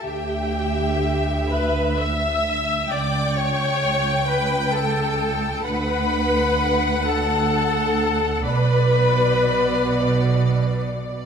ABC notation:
X:1
M:12/8
L:1/8
Q:3/8=43
K:D
V:1 name="Violin section"
g3 b e'2 d' c'2 b a2 | b3 a3 b4- b z |]
V:2 name="Violin section"
e6 g6 | f6 d6 |]
V:3 name="Viola section"
G3 B e2 d c2 B A2 | B3 A3 B4- B z |]
V:4 name="Cello section" clef=bass
D,,6 C,,6 | D,,6 B,,6 |]
V:5 name="Double bass section" clef=bass
D,,6 C,,6 | D,,6 B,,,6 |]